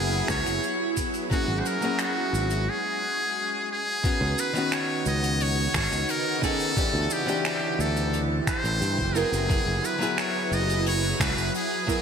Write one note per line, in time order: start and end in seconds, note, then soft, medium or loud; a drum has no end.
0.00 0.21 F#1 medium
0.00 1.26 F#3 medium
0.00 1.29 F#3 medium
0.00 1.27 B3 medium
0.00 1.28 B3 medium
0.00 1.27 E4 medium
0.00 0.27 G#4 loud
0.00 1.28 G#4 loud
0.00 1.28 G#4 medium
0.28 0.41 C#2 loud
0.28 0.94 C#5 loud
0.28 finger snap medium
0.28 kick loud
0.28 cabasa medium
0.46 0.58 F#1 medium
0.46 closed hi-hat medium
0.46 cabasa medium
0.63 closed hi-hat medium
0.63 cabasa soft
0.96 kick medium
0.96 closed hi-hat soft
0.96 cabasa medium
1.14 closed hi-hat medium
1.14 cabasa medium
1.30 1.78 F#3 medium
1.30 1.78 A#3 medium
1.30 1.78 C#4 medium
1.30 1.61 F#4 loud
1.30 1.79 G#4 medium
1.30 kick loud
1.30 closed hi-hat medium
1.30 cabasa soft
1.48 1.60 G#1 medium
1.60 1.68 C5 medium
1.65 2.02 A#4 loud
1.65 closed hi-hat medium
1.65 cabasa medium
1.80 2.67 F#3 medium
1.80 2.67 A#3 medium
1.80 2.68 C#4 medium
1.80 closed hi-hat medium
1.80 cabasa medium
1.85 2.69 G#4 loud
1.99 2.71 F#4 medium
1.99 finger snap medium
1.99 closed hi-hat medium
1.99 cabasa soft
2.33 2.67 G#1 medium
2.33 closed hi-hat soft
2.33 cabasa medium
2.50 closed hi-hat medium
2.50 cabasa medium
2.70 3.71 G#4 loud
3.72 4.41 G#4 loud
4.03 6.74 C#3 medium
4.03 4.51 D#3 medium
4.03 6.74 B3 medium
4.03 4.51 B3 medium
4.03 4.51 C#4 medium
4.03 6.74 D#4 medium
4.03 6.74 F#4 medium
4.03 4.52 F#4 medium
4.03 kick loud
4.03 closed hi-hat medium
4.03 cabasa soft
4.21 4.33 C#2 loud
4.38 4.76 B4 loud
4.38 closed hi-hat medium
4.38 cabasa medium
4.53 6.38 D#3 medium
4.53 6.39 B3 medium
4.53 6.40 C#4 medium
4.53 closed hi-hat medium
4.53 cabasa medium
4.57 6.40 F#4 medium
4.72 5.07 C#5 loud
4.72 finger snap medium
4.72 closed hi-hat medium
4.72 cabasa soft
5.06 5.67 C#2 medium
5.06 5.44 D#5 loud
5.06 closed hi-hat soft
5.06 cabasa medium
5.24 closed hi-hat medium
5.24 cabasa medium
5.40 5.75 C#5 loud
5.40 closed hi-hat medium
5.40 cabasa soft
5.74 5.87 G#1 loud
5.74 6.12 C#5 loud
5.74 finger snap medium
5.74 kick loud
5.74 cabasa medium
5.91 6.03 C#2 medium
5.91 closed hi-hat medium
5.91 cabasa medium
6.08 6.44 A#4 loud
6.08 closed hi-hat medium
6.08 cabasa medium
6.41 6.72 D#3 medium
6.41 6.72 B3 medium
6.41 6.73 C#4 medium
6.41 6.73 G#4 loud
6.41 7.14 A4 loud
6.41 kick medium
6.41 closed hi-hat medium
6.41 cabasa medium
6.60 closed hi-hat medium
6.60 cabasa medium
6.76 9.12 D3 medium
6.76 7.23 E3 medium
6.76 9.12 C4 medium
6.76 7.24 C4 medium
6.76 7.24 D4 medium
6.76 12.02 E4 medium
6.76 9.13 G4 medium
6.76 7.24 G4 medium
6.76 kick loud
6.76 closed hi-hat medium
6.76 cabasa soft
6.94 7.06 D2 medium
7.10 7.46 G4 medium
7.10 closed hi-hat medium
7.10 cabasa loud
7.25 9.11 E3 medium
7.25 9.11 C4 medium
7.25 9.12 D4 medium
7.25 closed hi-hat medium
7.25 cabasa medium
7.30 9.13 G4 loud
7.45 7.82 G4 medium
7.45 finger snap medium
7.45 closed hi-hat medium
7.45 cabasa soft
7.79 8.39 D2 medium
7.79 8.21 A4 loud
7.79 closed hi-hat soft
7.79 cabasa medium
7.96 closed hi-hat medium
7.96 cabasa medium
8.13 closed hi-hat medium
8.13 cabasa soft
8.47 9.18 C5 loud
8.47 finger snap medium
8.47 kick loud
8.47 cabasa loud
8.64 8.80 A1 medium
8.64 closed hi-hat medium
8.64 cabasa medium
8.81 9.00 G2 medium
8.81 closed hi-hat medium
8.81 cabasa medium
8.98 9.23 F#1 loud
8.98 kick medium
9.14 9.45 F#3 medium
9.14 12.02 F#3 medium
9.14 9.45 B3 medium
9.14 9.46 E4 medium
9.14 12.02 G#4 medium
9.14 9.87 G#4 loud
9.14 9.46 A#4 loud
9.14 12.02 B4 medium
9.14 closed hi-hat medium
9.14 cabasa medium
9.32 9.57 F#1 medium
9.32 closed hi-hat medium
9.32 cabasa medium
9.48 9.96 F#3 medium
9.48 9.96 B3 medium
9.48 9.97 E4 medium
9.48 9.97 G#4 medium
9.48 kick loud
9.48 closed hi-hat medium
9.48 cabasa soft
9.66 9.78 F#1 medium
9.84 10.19 B4 medium
9.84 closed hi-hat medium
9.84 cabasa medium
9.98 11.84 F#3 medium
9.98 11.84 B3 medium
9.98 11.85 E4 medium
9.98 closed hi-hat medium
9.98 cabasa medium
10.03 11.86 G#4 loud
10.18 10.55 C#5 loud
10.18 finger snap medium
10.18 closed hi-hat medium
10.18 cabasa medium
10.51 11.12 F#1 medium
10.51 10.87 D#5 loud
10.51 closed hi-hat soft
10.51 cabasa medium
10.69 closed hi-hat medium
10.69 cabasa medium
10.86 11.23 C#5 loud
10.86 closed hi-hat medium
10.86 cabasa soft
11.20 11.32 C#2 loud
11.20 11.55 B4 loud
11.20 finger snap medium
11.20 kick loud
11.20 cabasa medium
11.37 11.49 F#1 medium
11.37 closed hi-hat medium
11.37 cabasa medium
11.54 11.87 G#4 loud
11.54 closed hi-hat medium
11.54 cabasa medium
11.87 12.02 F#3 medium
11.87 12.02 B3 medium
11.87 12.02 E4 medium
11.87 12.02 G#4 loud
11.87 12.02 A#4 loud
11.87 kick medium
11.87 closed hi-hat soft
11.87 cabasa medium